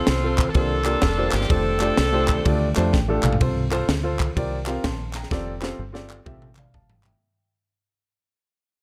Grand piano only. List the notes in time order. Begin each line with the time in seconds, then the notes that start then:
Already playing: C3
0.23 C4 F4 A4
0.54 C3 A#3 D4 F4 G4 C5
0.85 A#3 D4 F4 G4 A#4
1.17 A#3 D4 F4 G4 C5
1.49 A3 D4 F4 G4 C5
1.80 A3 D4 F4 G4 D5
2.12 A3 D4 F4 G4 C5
2.45 A3 D4 F4 G4 D5
2.75 A3 D4 F4 G4 C5 A5
2.93 G5
3.08 A3 D4 F4 G4 A4
3.25 F5
3.40 C3 F4 A4 C5
3.71 F4 A4 C5
4.03 F4 A4 C5
4.36 C3 C4 F4 G4 A#4 D5
4.67 C4 F4 G4 A#4 F5
4.84 A5 C6
5.16 G5 A#5
5.31 C4 F4 G4 A4 D5
5.61 C4 F4 G4 A4 C5
5.92 C4 F4 G4 A4 D5
6.25 C4 F4 G4 A4 E5
6.57 D5 F5
6.74 F5 A5
7.05 E5 G5